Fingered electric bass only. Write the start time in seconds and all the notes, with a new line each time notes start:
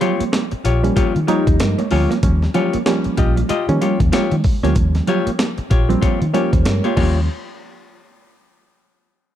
0.21 muted fingered electric bass stroke
0.53 muted fingered electric bass stroke
0.65 A#1
0.97 muted fingered electric bass stroke
1.16 D#3
1.47 D#2
1.60 G2
1.92 D2
2.23 D#2
2.74 muted fingered electric bass stroke
3.06 muted fingered electric bass stroke
3.18 A#1
3.50 muted fingered electric bass stroke
3.69 D#3
4.00 D#2
4.32 D#3
4.63 D2
4.76 D#2
5.27 muted fingered electric bass stroke
5.58 muted fingered electric bass stroke
5.71 A#1
6.03 muted fingered electric bass stroke
6.22 D#3
6.53 D#2
6.66 G2
6.97 D#2